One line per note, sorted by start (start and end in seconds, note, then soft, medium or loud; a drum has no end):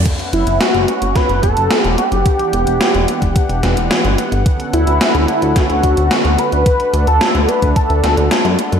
0.06 6.62 B3 medium
0.06 2.23 C#4 medium
0.06 8.80 F#5 medium
0.06 kick loud
0.06 closed hi-hat medium
0.06 crash medium
0.19 closed hi-hat soft
0.33 0.45 F#1 medium
0.33 0.59 E4 medium
0.33 closed hi-hat medium
0.47 0.59 F#1 medium
0.47 closed hi-hat medium
0.60 1.17 F#4 loud
0.60 snare loud
0.60 closed hi-hat medium
0.74 0.86 F#1 medium
0.74 closed hi-hat soft
0.88 closed hi-hat medium
1.02 1.14 F#1 medium
1.02 closed hi-hat medium
1.15 1.42 B4 loud
1.15 kick loud
1.15 snare medium
1.15 closed hi-hat medium
1.29 1.41 F#1 medium
1.29 closed hi-hat soft
1.43 1.55 F#1 medium
1.43 1.83 A4 loud
1.43 kick medium
1.43 closed hi-hat medium
1.57 1.69 F#1 medium
1.57 closed hi-hat medium
1.71 snare loud
1.71 closed hi-hat medium
1.83 1.96 E1 medium
1.83 1.94 G4 loud
1.83 closed hi-hat soft
1.98 3.59 G4 loud
1.98 closed hi-hat medium
2.12 2.24 F#1 medium
2.12 closed hi-hat medium
2.26 4.44 E3 medium
2.26 4.44 D4 medium
2.26 4.44 G4 medium
2.26 kick loud
2.26 closed hi-hat medium
2.39 closed hi-hat soft
2.53 2.65 E1 medium
2.53 closed hi-hat medium
2.67 2.79 E1 medium
2.67 closed hi-hat medium
2.81 snare loud
2.81 closed hi-hat medium
2.94 3.06 E1 medium
2.94 closed hi-hat soft
3.08 closed hi-hat medium
3.22 3.34 E1 medium
3.22 kick medium
3.22 closed hi-hat medium
3.36 kick loud
3.36 closed hi-hat medium
3.49 3.61 E1 medium
3.49 closed hi-hat soft
3.63 3.75 E1 medium
3.63 snare medium
3.63 closed hi-hat medium
3.77 3.89 E1 medium
3.77 closed hi-hat medium
3.91 snare loud
3.91 closed hi-hat medium
4.05 4.16 G1 medium
4.05 closed hi-hat soft
4.18 closed hi-hat medium
4.32 4.44 G1 medium
4.32 closed hi-hat medium
4.46 6.64 D3 medium
4.46 6.64 C#4 medium
4.46 6.64 A4 medium
4.46 kick loud
4.46 closed hi-hat medium
4.60 closed hi-hat soft
4.73 4.85 D2 medium
4.73 5.58 E4 loud
4.73 closed hi-hat medium
4.87 4.99 D2 medium
4.87 closed hi-hat medium
5.01 snare loud
5.01 closed hi-hat medium
5.15 5.27 D2 medium
5.15 closed hi-hat soft
5.28 closed hi-hat medium
5.42 5.54 D2 medium
5.42 closed hi-hat medium
5.56 6.40 F#4 loud
5.56 kick loud
5.56 snare medium
5.56 closed hi-hat medium
5.70 5.82 D2 medium
5.70 closed hi-hat soft
5.83 5.95 D2 medium
5.83 kick medium
5.83 closed hi-hat medium
5.97 6.09 D2 medium
5.97 closed hi-hat medium
6.11 snare loud
6.11 closed hi-hat medium
6.25 6.37 D2 medium
6.25 closed hi-hat soft
6.39 7.07 B4 loud
6.39 closed hi-hat medium
6.52 6.64 D2 medium
6.52 closed hi-hat medium
6.66 8.80 A3 medium
6.66 8.80 D4 medium
6.66 kick loud
6.66 closed hi-hat medium
6.80 closed hi-hat soft
6.94 7.05 D2 medium
6.94 closed hi-hat medium
7.07 7.19 D2 medium
7.07 7.50 A4 loud
7.07 closed hi-hat medium
7.21 snare loud
7.21 closed hi-hat medium
7.35 7.47 D2 medium
7.35 closed hi-hat soft
7.49 7.76 B4 loud
7.49 closed hi-hat medium
7.62 7.74 D2 medium
7.62 kick medium
7.62 closed hi-hat medium
7.76 8.55 A4 loud
7.76 kick loud
7.76 closed hi-hat medium
7.90 8.02 D2 medium
7.90 closed hi-hat soft
8.04 8.16 D2 medium
8.04 snare medium
8.04 closed hi-hat medium
8.17 8.29 D2 medium
8.17 closed hi-hat medium
8.31 snare loud
8.31 closed hi-hat medium
8.45 8.57 F#2 medium
8.45 closed hi-hat soft
8.59 closed hi-hat medium
8.72 8.80 F#2 medium
8.72 closed hi-hat soft